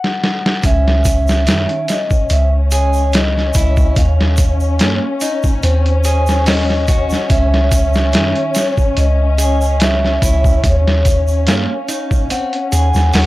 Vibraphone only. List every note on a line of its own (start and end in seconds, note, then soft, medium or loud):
0.00 0.60 F#5 medium
0.65 1.93 E5 medium
1.90 2.32 D#5 medium
2.31 2.49 E5 medium
2.73 3.15 C#5 medium
3.15 4.00 D#5 medium
3.97 5.26 F5 loud
5.22 5.41 D#5 medium
5.64 6.49 C5 medium
6.47 7.26 D#5 medium
7.30 8.59 E5 loud
8.56 8.98 C#5 medium
8.97 9.83 D#5 medium
9.80 10.66 E5 medium
10.64 11.50 C#5 medium
11.47 12.33 F5 loud
12.31 13.13 F#5 medium
13.14 13.26 F#5 loud